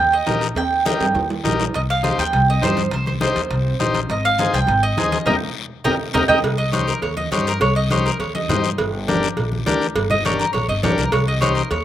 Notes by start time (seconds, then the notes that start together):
Already playing: D#2 G5
0.13 D#5
0.26 A#1 D#4 G4 A#4, high conga, high timbale, low timbale, short guiro
0.41 high timbale, short guiro
0.55 D#2 G5, high conga, high timbale, long guiro
0.85 D#4 G4 A#4 G5, high conga, short guiro
1.00 G2, high timbale, short guiro
1.14 D#2, high conga, low timbale, long guiro
1.30 low timbale
1.44 A#1 D#4 G4 A#4, high conga, low timbale, short guiro
1.60 low timbale, short guiro
1.74 C2 D#5, high conga, high timbale, long guiro
1.90 F5
2.03 D#4 G4 C5, high conga, high timbale, short guiro
2.18 D#2 G5, high timbale, short guiro
2.33 C2, high conga, high timbale, long guiro
2.50 D#5
2.62 G2 D#4 G4 C5, high conga, high timbale, low timbale, short guiro
2.77 high conga, high timbale, short guiro
2.91 C2 C5, high conga, high timbale, long guiro
3.06 C5, high conga
3.21 D#4 G4 C5, high conga, high timbale, short guiro
3.36 D#2, high timbale, short guiro
3.50 C2, high conga, high timbale, long guiro
3.80 A#1 D#4 G4 C5, high conga, high timbale, low timbale, short guiro
3.94 high conga, high timbale, short guiro
4.09 G#1 D#5, high conga, high timbale, long guiro
4.25 F5
4.38 D#4 G#4 C5, high conga, high timbale, short guiro
4.53 C2 G5, high timbale, short guiro
4.67 G#1, high conga, high timbale, long guiro
4.83 D#5
4.97 D#4 G#4 C5, high conga, high timbale, low timbale, short guiro
5.12 D#5, high conga, high timbale, short guiro
5.26 D#2 D#4 G4 A#4 D#5 G5, low conga, high timbale, long guiro
5.84 D#2 D#4 G4 A#4 D#5 G5, low conga, high timbale, long guiro
6.14 D#2 D#4 G4 A#4 D#5 G5, low conga, high timbale, long guiro
6.28 D#2 D#4 G4 A#4 D#5 G5, low conga, high timbale, long guiro
6.43 C2, cowbell, long guiro
6.58 D#5
6.72 D#4 G4 C5 C#5, cowbell, high conga, short guiro
6.88 A#4, short guiro
7.02 D#2 C#5, cowbell, long guiro
7.17 D#5, high conga
7.31 G2 D#4 G4 C5 C#5, cowbell, high conga, short guiro
7.47 A#4, short guiro
7.60 C2 C#5, cowbell, long guiro
7.76 D#5
7.90 D#4 G4 C5 C#5, cowbell, high conga, short guiro
8.06 A#4, short guiro
8.19 D#2 C#5, cowbell, long guiro
8.35 D#5, high conga
8.48 G2 D#4 G4 C5, cowbell, high conga, low conga, low timbale, short guiro
8.64 short guiro
8.78 G1, cowbell, long guiro
9.08 D4 G4 A#4, cowbell, high conga, short guiro
9.23 short guiro
9.37 A#1, cowbell, long guiro
9.52 high conga
9.66 D2 D4 G4 A#4, cowbell, high conga, low timbale, short guiro
9.81 short guiro
9.95 G1, cowbell, long guiro
10.10 D#5, low conga
10.25 D4 G4 A#4 C#5, cowbell, high conga, short guiro
10.39 A#4, short guiro
10.53 A#1 C#5, cowbell, long guiro
10.68 G1 D#5
10.83 A#1 D4 G4 A#4 C#5, cowbell, high conga, low conga, low timbale, short guiro
10.97 C2 A#4, short guiro
11.12 C2 C#5, cowbell, long guiro
11.28 D#5
11.41 D#4 G4 C5 C#5, cowbell, high conga, short guiro
11.55 A#4, short guiro
11.71 D#2 C#5, cowbell, long guiro